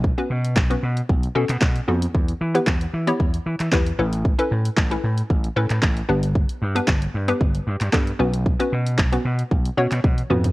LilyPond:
<<
  \new Staff \with { instrumentName = "Synth pluck" } { \time 4/4 \key b \minor \tempo 4 = 114 r16 <b cis' fis' b'>8 r8 <b cis' fis' b'>8. r8 <b cis' fis' a'>8 r8 <b cis' fis' a'>8 | r8. <b e' g' b'>8 r8 <b e' g' cis''>8. r8 <b e' g' b'>8 <cis' e' a' b'>8 | r16 <cis' e' a' b'>8 r8 <cis' e' a' b'>8. r8 <cis' e' a' b'>8 r8 <b d' g' b'>8~ | <b d' g' b'>8 r16 <b d' g' b'>8 r8 <b d' g' b'>8. r8 <b d' g' a'>8 <b cis' fis' b'>8 |
r16 <b cis' fis' b'>8 r8 <b cis' fis' b'>8. r8 <b cis' fis' cis''>8 r8 <b cis' fis' b'>8 | }
  \new Staff \with { instrumentName = "Slap bass" } { \clef bass \time 4/4 \key b \minor b,,8 b,8 b,,8 b,8 b,,8 b,16 b,16 b,8 f,8 | e,8 e8 e,8 e8 e,8 e16 e16 e,8 a,,8~ | a,,8 a,8 a,,8 a,8 a,,8 a,16 a,16 a,,8 g,,8~ | g,,8 g,8 g,,8 g,8 g,,8 g,16 g,16 g,8 b,,8~ |
b,,8 b,8 b,,8 b,8 b,,8 b,16 b,16 b,8 f,8 | }
  \new DrumStaff \with { instrumentName = "Drums" } \drummode { \time 4/4 bd16 hh8 hh16 <hc bd sn>16 hh8 hh16 bd16 hh8 <hc hh>16 <hc bd sn>16 hh8 hh16 | bd16 hh8 hh16 <hc bd sn>16 hh8 hh16 bd16 hh8 <hc hh>16 <hc bd sn>16 hh8 hh16 | bd16 hh8 hh16 <hc bd sn>16 hh8 hh16 bd16 hh8 <hc hh>16 <hc bd sn>16 hh8 hh16 | bd16 hh8 hh16 <hc bd sn>16 hh8 hh16 bd16 hh8 <hc hh>16 <hc bd sn>16 hh8 hh16 |
bd16 hh8 hh16 <hc bd sn>16 hh8 hh16 bd16 hh8 <hc hh>16 <bd tommh>16 hh16 toml16 <hh tomfh>16 | }
>>